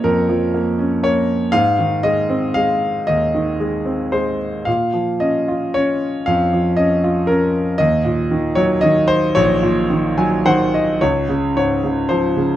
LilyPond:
<<
  \new Staff \with { instrumentName = "Grand piano" } { \time 3/4 \key des \major \tempo 4 = 115 << { r2. | r2. | r2. | r2. |
r2. | r2. | r4. aes''8 ges''8 ees''8 | r2. | } \\ { bes'2 des''4 | f''4 ees''4 f''4 | ees''2 c''4 | f''4 ees''4 des''4 |
f''4 ees''4 bes'4 | ees''4. des''8 ees''8 c''8 | des''2 c''4 | des''4 des''4 c''4 | } >> }
  \new Staff \with { instrumentName = "Grand piano" } { \clef bass \time 3/4 \key des \major <f, bes des'>8 f8 bes8 des'8 bes4 | aes,8 ees8 aes8 c'8 aes4 | ees,8 ees8 aes8 c'8 aes4 | bes,8 f8 des'8 f'8 des'4 |
f,8 f8 des'8 f'8 des'4 | ees,8 bes,8 ees8 ges8 ees4 | bes,,8 bes,8 ees8 ges8 ees4 | des,8 des8 aes,8 des8 f8 des8 | }
>>